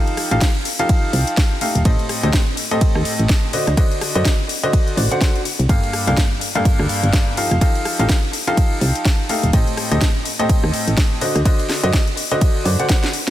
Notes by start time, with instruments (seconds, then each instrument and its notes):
Already playing: grand piano F3 D#4 G4 A4 F5
0.07 closed hi-hat
0.17 cross-stick, open hi-hat
0.31 fm bass A1, grand piano F3 D#4 G4 A4 F5, closed hi-hat
0.41 kick, snare, closed hi-hat, ride
0.65 open hi-hat
0.79 grand piano F3 D#4 G4 A4 F5, closed hi-hat
0.89 kick, closed hi-hat, ride
1.13 fm bass C2, open hi-hat
1.27 closed hi-hat
1.37 kick, snare, closed hi-hat, ride
1.61 grand piano A3 D#4 G4 A4 F5, open hi-hat
1.75 fm bass D#1, closed hi-hat
1.85 fm bass A1, grand piano A2 C4 G4 A4 D#5, kick, closed hi-hat, ride
1.99 closed hi-hat
2.09 cross-stick, open hi-hat
2.23 fm bass D2, grand piano A2 C4 G4 A4 D#5, closed hi-hat
2.33 kick, snare, closed hi-hat, ride
2.57 open hi-hat
2.71 grand piano A2 C4 G4 A4 D#5, closed hi-hat
2.81 kick, closed hi-hat, ride
2.95 fm bass D#2, cross-stick
3.05 open hi-hat
3.19 fm bass A1, closed hi-hat
3.29 kick, snare, closed hi-hat, ride
3.53 grand piano D3 D4 F#4 C5 D#5, open hi-hat
3.67 fm bass D2, cross-stick, closed hi-hat
3.77 grand piano D3 D4 F#4 C5 D#5, kick, closed hi-hat, ride
3.91 closed hi-hat
4.01 cross-stick, open hi-hat
4.15 fm bass F#2, grand piano D3 D4 F#4 C5 D#5, closed hi-hat
4.25 kick, snare, closed hi-hat, ride
4.49 open hi-hat
4.63 grand piano D3 D4 F#4 C5 D#5, closed hi-hat
4.73 kick, closed hi-hat, ride
4.88 closed hi-hat
4.97 fm bass A1, grand piano D3 D4 F#4 C5 D5, open hi-hat
5.11 grand piano D3 D4 F#4 C5 F#5, closed hi-hat
5.21 grand piano D4 F#4 C5 F#5, kick, snare, closed hi-hat, ride
5.36 closed hi-hat
5.45 open hi-hat
5.59 fm bass C2, closed hi-hat
5.69 fm bass G1, grand piano G2 A#3 G4 A4 F5, kick, closed hi-hat, ride
5.83 closed hi-hat
5.93 cross-stick, open hi-hat
6.07 fm bass C2, grand piano G2 A#3 G4 A4 F5, closed hi-hat
6.17 kick, snare, closed hi-hat, ride
6.41 open hi-hat
6.55 grand piano G2 A#3 G4 A4 F5, closed hi-hat
6.65 kick, closed hi-hat, ride
6.79 fm bass D2, cross-stick
6.89 open hi-hat
7.03 fm bass G1, closed hi-hat
7.13 kick, snare, closed hi-hat, ride
7.37 grand piano F3 D#4 G4 A4 F5, open hi-hat
7.51 fm bass F1, cross-stick, closed hi-hat
7.61 grand piano F3 D#4 G4 A4 F5, kick, closed hi-hat, ride
7.75 closed hi-hat
7.85 cross-stick, open hi-hat
7.99 fm bass A1, grand piano F3 D#4 G4 A4 F5, closed hi-hat
8.09 kick, snare, closed hi-hat, ride
8.33 open hi-hat
8.47 grand piano F3 D#4 G4 A4 F5, closed hi-hat
8.57 kick, closed hi-hat, ride
8.81 fm bass C2, open hi-hat
8.95 closed hi-hat
9.05 kick, snare, closed hi-hat, ride
9.29 grand piano A3 D#4 G4 A4 F5, open hi-hat
9.43 fm bass D#1, closed hi-hat
9.53 fm bass A1, grand piano A2 C4 G4 A4 D#5, kick, closed hi-hat, ride
9.67 closed hi-hat
9.77 cross-stick, open hi-hat
9.92 fm bass D2, grand piano A2 C4 G4 A4 D#5, closed hi-hat
10.01 kick, snare, closed hi-hat, ride
10.25 open hi-hat
10.39 grand piano A2 C4 G4 A4 D#5, closed hi-hat
10.49 kick, closed hi-hat, ride
10.64 fm bass D#2, cross-stick
10.74 open hi-hat
10.88 fm bass A1, closed hi-hat
10.97 kick, snare, closed hi-hat, ride
11.21 grand piano D3 D4 F#4 C5 D#5, open hi-hat
11.36 fm bass D2, cross-stick, closed hi-hat
11.45 grand piano D3 D4 F#4 C5 D#5, kick, closed hi-hat, ride
11.60 closed hi-hat
11.69 cross-stick, snare, open hi-hat
11.83 fm bass F#2, grand piano D3 D4 F#4 C5 D#5, closed hi-hat
11.93 kick, snare, closed hi-hat, ride
12.07 closed hi-hat
12.17 open hi-hat
12.31 grand piano D3 D4 F#4 C5 D#5, closed hi-hat
12.41 kick, closed hi-hat, ride
12.65 fm bass F#2, grand piano D3 D4 F#4 C5 D5, open hi-hat
12.80 grand piano D3 D4 F#4 C5 F#5, closed hi-hat
12.89 grand piano D3 D4 F#4 C5 F#5, kick, snare, closed hi-hat, ride
13.03 snare, closed hi-hat
13.13 open hi-hat